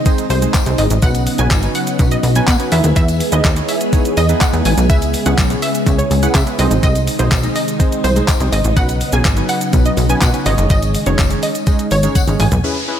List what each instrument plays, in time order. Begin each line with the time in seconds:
Already playing: string machine C3 D#3 G#3 D#4
0.06 synth keys G#3 C4 D#4 G#4 C5, kick, closed hi-hat, tambourine, shaker
0.18 closed hi-hat, shaker
0.30 analog synth bass C2, synth pluck C5, open hi-hat, tambourine, shaker
0.42 synth keys G#3 C4 D#4 G#4 C5, closed hi-hat, shaker
0.54 kick, clap, closed hi-hat, tambourine, shaker
0.66 analog synth bass C2, synth keys G#3 C4 D#4 G#4 C5, closed hi-hat, shaker
0.78 analog synth bass G#1, synth pluck D#5, open hi-hat, tambourine, shaker
0.90 analog synth bass A1, closed hi-hat, tambourine, shaker
1.02 analog synth bass B1, string machine C#3 B3, synth keys B3 C#4 D#4 F#4 B4, synth pluck F#5, kick, closed hi-hat, tambourine, shaker
1.15 closed hi-hat, tambourine, shaker
1.27 open hi-hat, shaker
1.38 analog synth bass B1, synth keys B3 C#4 D#4 F#4 B4, synth pluck G#5, closed hi-hat, shaker
1.51 analog synth bass G#1, kick, clap, closed hi-hat, tambourine, shaker
1.63 synth keys B3 C#4 D#4 F#4 B4, closed hi-hat, shaker
1.75 synth pluck F#5, open hi-hat, tambourine, shaker
1.87 closed hi-hat, tambourine, shaker
1.99 analog synth bass B1, synth keys B3 C#4 D#4 F#4 B4, kick, closed hi-hat, tambourine, shaker
2.11 synth pluck D#5, closed hi-hat, shaker
2.23 analog synth bass B1, open hi-hat, tambourine, shaker
2.35 synth keys B3 C#4 D#4 F#4 B4, synth pluck G#5, closed hi-hat, tambourine, shaker
2.47 analog synth bass B2, synth pluck F#5, kick, clap, closed hi-hat, tambourine, shaker
2.60 synth keys B3 C#4 D#4 F#4 B4, closed hi-hat, shaker
2.71 analog synth bass E2, string machine E3 G#3 G#4, synth keys B3 D#4 E4 G#4 B4, synth pluck E5, open hi-hat, tambourine, shaker
2.84 analog synth bass D#2, closed hi-hat, tambourine, shaker
2.96 analog synth bass E2, synth pluck E5, kick, closed hi-hat, tambourine, shaker
3.08 closed hi-hat, tambourine, shaker
3.20 open hi-hat, shaker
3.32 analog synth bass D#2, synth keys B3 D#4 E4 G#4 B4, synth pluck D#5, closed hi-hat, shaker
3.44 analog synth bass D#2, kick, clap, closed hi-hat, tambourine, shaker
3.56 synth keys B3 D#4 E4 G#4 C#5, closed hi-hat, shaker
3.69 synth pluck E5, open hi-hat, tambourine, shaker
3.81 closed hi-hat, shaker
3.93 synth keys B3 D#4 E4 G#4 C#5, kick, closed hi-hat, tambourine, shaker
4.05 closed hi-hat, shaker
4.17 analog synth bass E2, synth pluck D#5, open hi-hat, tambourine, shaker
4.29 synth keys B3 D#4 E4 G#4 B4, closed hi-hat, shaker
4.41 synth pluck F#5, kick, clap, closed hi-hat, tambourine, shaker
4.53 analog synth bass E2, synth keys B3 D#4 E4 G#4 B4, closed hi-hat, shaker
4.65 analog synth bass A1, synth pluck G#5, open hi-hat, tambourine, shaker
4.78 analog synth bass B1, closed hi-hat, tambourine, shaker
4.89 analog synth bass C#2, string machine C#3, synth keys B3 C#4 E4 G#4 B4, synth pluck E5, kick, closed hi-hat, tambourine, shaker
5.02 closed hi-hat, tambourine, shaker
5.14 open hi-hat, shaker
5.26 analog synth bass C#2, synth keys B3 C#4 E4 G#4 B4, synth pluck F#5, closed hi-hat, tambourine, shaker
5.38 analog synth bass B1, kick, clap, closed hi-hat, tambourine, shaker
5.50 synth keys B3 C#4 E4 G#4 C#5, closed hi-hat, shaker
5.62 synth pluck E5, open hi-hat, tambourine, shaker
5.75 closed hi-hat, tambourine, shaker
5.86 analog synth bass C#2, synth keys B3 C#4 E4 G#4 C#5, kick, closed hi-hat, tambourine, shaker
5.98 synth pluck C#5, closed hi-hat, shaker
6.11 analog synth bass C#2, open hi-hat, tambourine, shaker
6.23 synth keys B3 C#4 E4 G#4 B4, synth pluck F#5, closed hi-hat, tambourine, shaker
6.35 analog synth bass C#3, synth pluck E5, kick, clap, closed hi-hat, tambourine, shaker
6.46 synth keys B3 C#4 E4 G#4 B4, closed hi-hat, shaker
6.58 analog synth bass C2, string machine C3 D#3 G#3 D#4, synth keys G#3 C4 D#4 G#4 C5, synth pluck D#5, open hi-hat, tambourine, shaker
6.71 analog synth bass A1, closed hi-hat, tambourine, shaker
6.83 analog synth bass C2, synth pluck D#5, kick, closed hi-hat, tambourine, shaker
6.95 closed hi-hat, tambourine, shaker
7.07 open hi-hat, shaker
7.19 analog synth bass B1, synth keys G#3 C4 D#4 G#4 D#5, synth pluck C5, closed hi-hat, tambourine, shaker
7.31 analog synth bass B1, kick, clap, closed hi-hat, tambourine, shaker
7.43 synth keys G#3 C4 D#4 G#4 D#5, closed hi-hat, shaker
7.56 synth pluck D#5, open hi-hat, tambourine, shaker
7.68 closed hi-hat, tambourine, shaker
7.79 synth keys G#3 C4 D#4 G#4 C5, kick, closed hi-hat, tambourine, shaker
7.92 closed hi-hat, shaker
8.04 analog synth bass C2, synth pluck C5, open hi-hat, tambourine, shaker
8.16 synth keys G#3 C4 D#4 G#4 C5, closed hi-hat, shaker
8.28 kick, clap, closed hi-hat, tambourine, shaker
8.40 analog synth bass C2, synth keys G#3 C4 D#4 G#4 C5, closed hi-hat, shaker
8.52 analog synth bass G#1, synth pluck D#5, open hi-hat, tambourine, shaker
8.64 analog synth bass A1, closed hi-hat, shaker
8.76 analog synth bass B1, string machine C#3 B3, synth keys B3 C#4 D#4 F#4 B4, synth pluck F#5, kick, closed hi-hat, tambourine, shaker
8.89 closed hi-hat, tambourine, shaker
9.01 open hi-hat, shaker
9.12 analog synth bass B1, synth keys B3 C#4 D#4 F#4 G#4, synth pluck G#5, closed hi-hat, shaker
9.25 analog synth bass G#1, kick, clap, closed hi-hat, tambourine, shaker
9.37 synth keys B3 C#4 D#4 F#4 B4, closed hi-hat, shaker
9.49 synth pluck F#5, open hi-hat, tambourine, shaker
9.61 closed hi-hat, tambourine, shaker
9.73 analog synth bass B1, synth keys B3 C#4 D#4 F#4 B4, kick, closed hi-hat, tambourine, shaker
9.86 synth pluck D#5, closed hi-hat, shaker
9.97 analog synth bass B1, open hi-hat, tambourine, shaker
10.09 synth keys B3 C#4 D#4 F#4 B4, synth pluck G#5, closed hi-hat, shaker
10.21 analog synth bass B2, synth pluck F#5, kick, clap, closed hi-hat, tambourine, shaker
10.34 synth keys B3 C#4 D#4 F#4 B4, closed hi-hat, shaker
10.46 analog synth bass G#1, string machine D#3 G#3, synth keys G#3 C#4 D#4 G#4 C#5, synth pluck D#5, open hi-hat, tambourine, shaker
10.58 analog synth bass F#1, closed hi-hat, tambourine, shaker
10.70 analog synth bass G#1, synth pluck D#5, kick, closed hi-hat, tambourine, shaker
10.82 closed hi-hat, tambourine, shaker
10.95 open hi-hat, shaker
11.06 analog synth bass F#1, synth keys G#3 C#4 D#4 G#4 C#5, synth pluck C#5, closed hi-hat, shaker
11.19 analog synth bass F#1, kick, clap, closed hi-hat, tambourine, shaker
11.30 synth keys G#3 C#4 D#4 G#4 C#5, closed hi-hat, shaker
11.43 synth pluck D#5, open hi-hat, tambourine, shaker
11.55 closed hi-hat, tambourine, shaker
11.67 synth keys G#3 C#4 D#4 G#4 D#5, kick, closed hi-hat, tambourine, shaker
11.79 closed hi-hat, shaker
11.91 analog synth bass G#1, synth pluck C#5, open hi-hat, tambourine, shaker
12.03 synth keys G#3 C#4 D#4 G#4 C#5, closed hi-hat, tambourine, shaker
12.15 synth pluck F#5, kick, closed hi-hat, high tom, tambourine, shaker
12.27 analog synth bass G#1, synth keys G#3 C#4 D#4 G#4 C#5, closed hi-hat, shaker
12.40 analog synth bass A1, synth pluck G#5, mid tom, open hi-hat, tambourine, shaker
12.52 analog synth bass B1, closed hi-hat, floor tom, shaker
12.64 synth keys C#4 E4 G#4 B4, downlifter
12.88 synth keys C#4 E4 G#4 B4